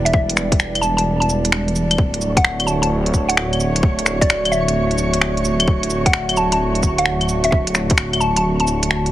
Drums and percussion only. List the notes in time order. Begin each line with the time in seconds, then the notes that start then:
0.06 closed hi-hat
0.14 kick
0.30 closed hi-hat
0.37 finger snap, cabasa
0.52 kick, closed hi-hat
0.60 finger snap, cabasa
0.75 closed hi-hat, claves
0.83 cabasa
0.98 closed hi-hat
1.22 closed hi-hat
1.29 cabasa
1.45 closed hi-hat
1.52 finger snap
1.68 closed hi-hat
1.76 cabasa
1.91 closed hi-hat, claves
1.98 kick
2.14 closed hi-hat
2.21 cabasa
2.37 kick, closed hi-hat
2.45 finger snap
2.60 closed hi-hat, claves
2.68 cabasa
2.83 closed hi-hat
3.06 closed hi-hat
3.14 kick, cabasa
3.29 closed hi-hat
3.37 finger snap
3.53 closed hi-hat, claves
3.60 cabasa
3.76 closed hi-hat
3.83 kick
3.99 closed hi-hat
4.06 finger snap, cabasa
4.22 kick, closed hi-hat
4.30 finger snap, cabasa
4.45 closed hi-hat, claves
4.53 cabasa
4.68 closed hi-hat
4.91 closed hi-hat
4.98 cabasa
5.14 closed hi-hat
5.21 finger snap
5.37 closed hi-hat
5.45 cabasa
5.60 closed hi-hat, claves
5.68 kick
5.83 closed hi-hat
5.90 cabasa
6.06 kick, closed hi-hat
6.13 finger snap
6.29 closed hi-hat, claves
6.37 cabasa
6.52 closed hi-hat
6.75 closed hi-hat
6.83 kick, cabasa
6.98 closed hi-hat
7.06 finger snap
7.21 closed hi-hat, claves
7.29 cabasa
7.44 closed hi-hat
7.52 kick
7.67 closed hi-hat
7.75 finger snap, cabasa
7.90 kick, closed hi-hat
7.98 finger snap, cabasa
8.13 closed hi-hat, claves
8.21 cabasa
8.36 closed hi-hat
8.60 closed hi-hat
8.67 cabasa
8.83 closed hi-hat
8.91 finger snap
9.06 closed hi-hat